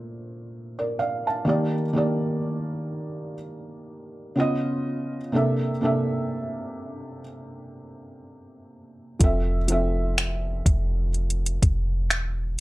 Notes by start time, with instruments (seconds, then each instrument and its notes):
Already playing: felt piano A#2 A3 D4 C5
0.79 felt piano A#4 D5
0.99 felt piano D5 F5
1.27 felt piano F5 A5
1.45 felt piano D#3 A#3 G4
1.49 felt piano D5
1.93 felt piano D#3 A#3 G4
1.98 felt piano D5
4.36 felt piano C#3 B3 F4
4.40 felt piano D#5
5.32 felt piano C3 A#3 D4 A4
5.36 felt piano E5
5.81 felt piano C3 A#3 D4 A4
5.85 felt piano E5
9.19 808-style bass F1, felt piano F3 C4 A4, kick, closed hi-hat
9.24 felt piano E5
9.68 felt piano F3 C4 A4, closed hi-hat
9.72 felt piano E5
10.18 finger snap, closed hi-hat
10.66 808-style bass F1, kick, closed hi-hat
11.14 closed hi-hat
11.30 closed hi-hat
11.46 closed hi-hat
11.62 808-style bass F1, kick, closed hi-hat
12.10 808-style bass E1, finger snap, closed hi-hat